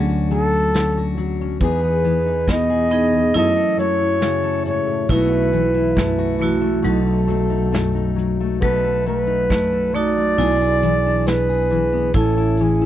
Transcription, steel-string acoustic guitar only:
0.00 0.73 D3 medium
0.00 0.30 C#4 medium
0.00 0.52 D4 medium
0.09 0.96 F#4 medium
0.31 1.16 F#3 medium
0.31 0.74 C#4 medium
0.53 1.57 D4 medium
0.75 1.56 D3 medium
0.75 1.40 C#4 medium
0.97 1.62 F#4 medium
1.17 1.56 F#3 medium
1.41 1.57 C#4 medium
1.61 3.11 E2 medium
1.61 2.04 B3 medium
1.61 2.25 D#4 medium
1.61 1.83 G#4 medium
1.84 2.69 G#4 medium
2.04 3.77 E3 medium
2.04 2.48 B3 medium
2.26 3.30 D#4 medium
2.48 3.36 B2 medium
2.48 3.31 B3 medium
2.70 3.30 G#4 medium
3.12 3.34 E2 medium
3.34 4.65 F#2 medium
3.34 3.78 A3 medium
3.34 4.00 E4 medium
3.34 3.56 A4 medium
3.57 4.43 A4 medium
3.77 5.13 F#3 medium
3.77 4.21 A3 medium
4.01 5.05 E4 medium
4.21 5.04 C#3 medium
4.21 5.10 A3 medium
4.43 5.11 A4 medium
4.66 4.86 G#2 medium
4.87 5.09 A2 medium
5.09 5.53 B2 medium
5.09 5.52 A3 medium
5.09 5.73 E4 medium
5.09 5.31 F#4 medium
5.32 6.17 F#4 medium
5.52 6.38 E3 medium
5.52 5.95 A3 soft
5.75 6.79 E4 medium
5.96 6.79 F#2 medium
5.96 6.60 A3 soft
6.19 8.62 F#4 medium
6.39 6.84 E3 medium
6.61 6.82 A3 medium
6.82 7.72 B2 medium
6.82 7.27 A3 medium
6.82 7.05 D#4 medium
7.06 7.49 D#4 medium
7.27 8.15 F#3 medium
7.27 7.71 A3 medium
7.50 7.94 D#4 medium
7.72 8.61 F#2 medium
7.72 8.39 A3 medium
7.95 8.61 D#4 medium
8.16 9.05 F#3 medium
8.40 8.61 A3 medium
8.61 9.50 B2 medium
8.61 9.05 A3 medium
8.61 9.26 D#4 medium
8.61 8.83 A4 medium
8.84 9.71 A4 medium
9.06 9.92 F#3 soft
9.06 9.48 A3 medium
9.27 10.33 D#4 medium
9.49 10.32 F#2 medium
9.49 10.16 A3 medium
9.73 10.33 A4 medium
9.93 10.32 F#3 medium
10.17 10.38 A3 medium
10.38 10.82 B2 medium
10.38 10.82 B3 medium
10.38 11.05 D4 medium
10.38 10.60 G#4 medium
10.61 11.48 G#4 medium
10.82 11.70 E3 medium
10.82 11.26 B3 medium
11.06 12.10 D4 medium
11.26 11.70 B2 medium
11.26 11.92 B3 medium
11.49 12.10 G#4 medium
11.71 12.58 E3 medium
11.93 12.09 B3 medium
12.15 12.86 A2 medium
12.15 12.59 C#4 medium
12.15 12.36 E4 medium
12.37 12.80 E4 medium
12.60 12.86 E3 medium
12.60 12.86 C#4 medium
12.81 12.86 E4 medium

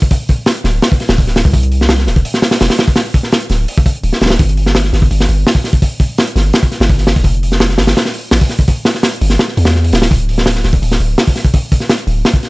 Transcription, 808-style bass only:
0.64 0.80 D1 loud
1.09 1.43 D1 loud
1.45 2.09 C2 medium
2.07 2.23 D1 loud
2.61 2.69 E1 medium
3.50 3.66 D1 loud
4.04 4.12 D1 medium
4.21 4.38 D1 medium
4.39 4.92 G1 loud
4.93 5.09 G1 loud
5.11 5.27 G1 medium
5.29 5.45 G1 loud
6.36 6.52 G1 loud
6.80 7.15 G1 loud
7.16 7.80 F1 medium
7.78 7.95 G1 loud
8.32 8.40 A1 medium
9.22 9.38 G1 loud
9.57 9.92 E2 loud
9.93 10.09 D1 loud
10.11 10.63 D1 loud
10.64 10.80 D1 loud
10.82 10.98 D1 loud
11.00 11.16 D1 loud
12.07 12.23 D1 loud

